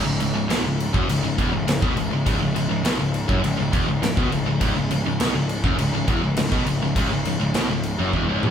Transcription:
0.05 C#1 C#2
0.19 C#1 C#2, crash
0.34 C#1 C#2
0.49 B1 B2, snare, crash
0.64 C#1 C#2
0.80 crash
0.94 F#1 F#2, kick
1.08 C#1 C#2, crash
1.23 C#1 C#2
1.38 E1 E2, kick, crash
1.53 C#1 C#2
1.67 C#1 C#2, snare, crash
1.82 B1 B2, kick
1.96 C#1 C#2, crash
2.11 C#1 C#2
2.26 C#1 C#2, kick, crash
2.40 C#1 C#2
2.55 C#1 C#2, crash
2.69 C#1 C#2
2.84 B1 B2, snare, crash
2.99 C#1 C#2
3.14 crash
3.28 F#1 F#2, kick
3.43 C#1 C#2, crash
3.58 C#1 C#2
3.73 E1 E2, kick, crash
3.88 C#1 C#2
4.03 C#1 C#2, snare, crash
4.17 B1 B2, kick
4.32 C#1 C#2, crash
4.46 C#1 C#2
4.60 C#1 C#2, kick, crash
4.76 C#1 C#2
4.91 C#1 C#2, crash
5.06 C#1 C#2
5.20 B1 B2, snare, crash
5.35 C#1 C#2
5.49 crash
5.64 F#1 F#2, kick
5.79 C#1 C#2, crash
5.95 C#1 C#2
6.08 E1 E2, kick, crash
6.23 C#1 C#2
6.37 C#1 C#2, snare, crash
6.51 B1 B2, kick
6.66 C#1 C#2, crash
6.82 C#1 C#2
6.96 C#1 C#2, kick, crash
7.11 C#1 C#2
7.25 C#1 C#2, crash
7.39 C#1 C#2
7.54 B1 B2, snare, crash
7.69 C#1 C#2
7.83 crash
7.99 F#1 F#2
8.13 E1 E2, kick
8.28 C#1 C#2
8.43 E1 E2, mid tom

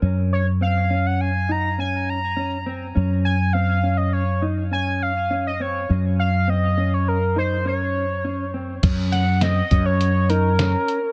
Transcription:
0.02 F#2 C#4
0.33 C#5
0.61 C4 F5
0.90 C#4
1.07 F#5
1.21 G#5
1.49 D#4 A#5
1.78 C#4 G#5
2.09 A#5
2.37 C#4
2.66 C4
2.95 F#2 C#4
3.25 G#5
3.53 C4 F5
3.83 C#4
3.97 D#5
4.13 C#5
4.42 D#4
4.71 C#4 G#5
5.02 F5
5.30 C#4
5.47 D#5
5.60 C4 C#5
5.89 F#2 C#4
6.19 F5
6.48 C4 D#5
6.78 C#4
6.94 C#5
7.08 A#4
7.36 D#4 C5
7.65 C#4 C#5
8.24 C#4
8.54 C4
8.83 F#2 C#4, kick, closed hi-hat, crash
9.12 F#5, snare, closed hi-hat
9.41 C4 D#5, snare, closed hi-hat
9.71 F#2 C#4, kick, closed hi-hat
9.86 C#5
10.01 closed hi-hat
10.29 D#4 A#4, closed hi-hat
10.59 C#4, snare, closed hi-hat
10.88 closed hi-hat

